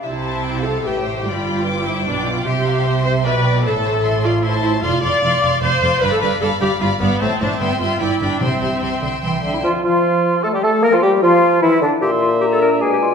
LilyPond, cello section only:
\new Staff \with { instrumentName = "Cello section" } { \clef bass \time 3/4 \key c \major \tempo 4 = 151 c2 a,4 | g,2 b,4 | c2 b,4 | a,2. |
f,8 f,8 f,8 f,8 f,8 f,8 | g,8 g,8 g,8 g,8 g,8 g,8 | a,8 a,8 g,8 g,8 g,8 g,8 | c8 c8 c8 d8 e8 d8 |
\key bes \lydian r2. | r2. | r2. | }